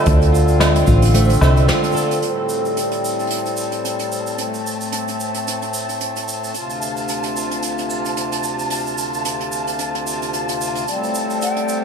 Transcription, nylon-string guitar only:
0.00 1.14 A3 medium
0.00 0.59 C4 medium
0.00 0.32 F4 medium
0.00 1.41 A4 medium
0.06 2.23 D3 loud
0.33 0.86 F4 medium
0.60 2.79 C4 medium
0.87 1.67 F4 medium
1.14 2.79 A3 medium
1.41 1.95 A4 medium
1.68 2.29 F4 medium
1.95 2.79 A4 medium

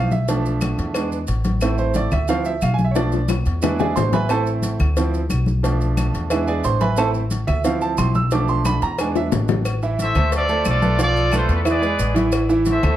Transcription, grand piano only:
0.00 0.11 F5 loud
0.12 0.91 E5 medium
0.28 0.92 F3 medium
0.28 0.92 A3 medium
0.28 0.93 D4 medium
0.95 1.17 G#3 medium
0.95 1.18 B3 soft
0.95 1.18 D4 medium
1.62 2.10 A3 medium
1.62 2.10 C4 medium
1.62 2.10 E4 medium
1.79 1.95 C5 medium
1.96 2.12 D5 medium
2.12 2.29 E5 medium
2.29 2.51 F3 medium
2.29 2.51 C4 soft
2.29 2.52 E4 medium
2.29 2.45 F5 loud
2.46 2.62 E5 loud
2.63 2.74 F5 medium
2.74 2.85 G#5 loud
2.85 2.96 E5 medium
2.91 3.18 A3 medium
2.91 2.94 C#5 medium
2.95 3.18 F3 medium
2.95 3.18 D4 medium
2.95 3.27 D5 medium
3.62 4.10 G#3 medium
3.62 4.10 B3 soft
3.62 4.11 D4 medium
3.62 3.79 E4 medium
3.62 3.78 G#4 medium
3.62 3.79 B4 medium
3.62 3.78 E5 medium
3.79 3.96 G#4 medium
3.79 3.96 D5 medium
3.79 3.96 E5 medium
3.79 3.96 G#5 medium
3.96 4.13 C5 medium
3.96 4.12 C6 loud
4.13 4.29 B4 medium
4.13 4.29 E5 medium
4.13 4.30 G#5 medium
4.13 4.30 B5 loud
4.29 4.77 A3 medium
4.29 4.78 C4 medium
4.29 4.78 E4 medium
4.29 4.47 A4 medium
4.29 4.47 C5 medium
4.29 4.47 E5 medium
4.29 4.47 A5 medium
4.97 5.19 F3 medium
4.97 5.20 C4 soft
4.97 5.20 E4 medium
5.63 6.27 F3 medium
5.63 6.27 A3 medium
5.63 6.28 D4 medium
6.31 6.79 G#3 medium
6.31 6.79 B3 medium
6.31 6.79 D4 medium
6.31 6.47 E4 medium
6.31 6.46 G#4 medium
6.31 6.47 B4 soft
6.31 6.46 E5 medium
6.47 6.64 G#4 medium
6.47 6.64 D5 medium
6.47 6.64 E5 medium
6.47 6.64 G#5 medium
6.65 6.81 C5 medium
6.65 6.81 C6 loud
6.81 6.98 B4 medium
6.81 6.97 E5 medium
6.81 6.97 G#5 medium
6.81 6.97 B5 loud
6.97 7.20 A3 medium
6.97 7.20 C4 medium
6.97 7.21 E4 medium
6.97 7.08 A4 medium
6.97 7.08 C5 medium
6.97 7.08 E5 medium
6.97 7.08 A5 loud
7.47 7.64 E5 loud
7.64 8.12 F3 medium
7.64 8.13 C4 medium
7.64 8.13 E4 medium
7.64 7.81 F5 medium
7.82 7.98 A5 loud
7.98 8.14 C6 medium
8.15 8.31 E6 loud
8.32 8.79 F3 medium
8.32 8.80 A3 medium
8.32 8.80 D4 medium
8.32 8.48 D6 loud
8.49 8.65 C6 medium
8.66 8.82 B5 loud
8.83 8.99 A#5 loud
9.00 9.63 G#3 medium
9.00 9.63 B3 soft
9.00 9.63 D4 medium
9.00 9.16 G#5 medium
9.17 9.26 E5 medium
9.83 10.10 E3 medium
9.83 10.10 E4 medium
9.83 10.10 E5 medium
10.16 10.43 A3 medium
10.16 10.43 A4 medium
10.16 10.43 C5 medium
10.49 10.76 A3 medium
10.49 10.77 A4 medium
10.49 10.77 C5 medium
10.82 10.96 A3 medium
10.82 10.96 A4 medium
10.82 10.96 B4 medium
10.99 11.26 F3 medium
10.99 11.26 F4 medium
10.99 11.27 F5 medium
11.32 11.60 A3 medium
11.32 11.60 A4 medium
11.32 11.60 B4 medium
11.65 11.79 E3 medium
11.65 11.79 E4 medium
11.65 11.79 E5 medium
11.81 12.09 G#3 medium
11.81 12.09 G#4 medium
11.81 12.10 B4 medium
12.14 12.43 E3 medium
12.14 12.43 E4 medium
12.14 12.43 E5 medium
12.49 12.77 E3 medium
12.49 12.77 E4 loud
12.49 12.77 E5 medium
12.83 12.97 A3 medium
12.83 12.97 A4 medium
12.83 12.97 C5 medium

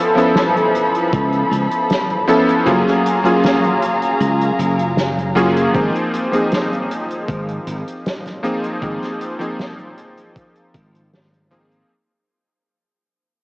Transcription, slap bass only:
1.13 1.42 C#2 loud
1.51 1.66 C#2 medium
2.66 2.81 F#1 loud
4.20 4.50 C#2 medium
4.59 5.67 F#1 loud
5.74 5.89 G#1 medium
7.28 7.58 G#1 medium
7.67 7.82 G#1 medium
8.82 8.97 G#1 medium
10.74 11.83 G#1 medium

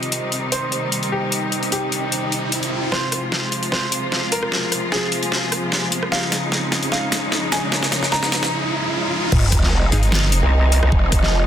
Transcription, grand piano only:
0.00 0.45 D#5 medium
0.52 1.05 C5 medium
1.12 1.65 G4 medium
1.72 2.85 G4 medium
2.92 3.65 C5 medium
3.72 4.25 C5 medium
4.32 4.85 A#4 medium
4.92 6.05 G#4 medium
6.12 6.85 F5 loud
6.92 7.45 F5 medium
7.52 8.05 G#5 loud
8.12 8.52 A#5 loud

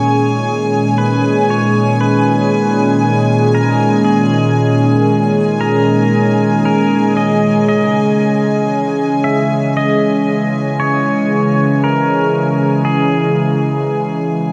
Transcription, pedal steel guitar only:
0.00 0.98 C#5 loud
0.98 1.49 B4 medium
1.50 2.00 C#5 medium
2.01 3.54 B4 medium
3.55 4.06 A#4 medium
4.04 5.63 G#4 medium
5.61 6.64 A#4 medium
6.65 7.16 A#4 medium
7.17 7.67 D#5 medium
7.69 9.24 D#5 medium
9.24 9.76 E5 medium
9.77 10.79 D#5 medium
10.80 11.84 C#5 medium
11.84 12.87 A#4 medium
12.85 14.52 G#4 medium

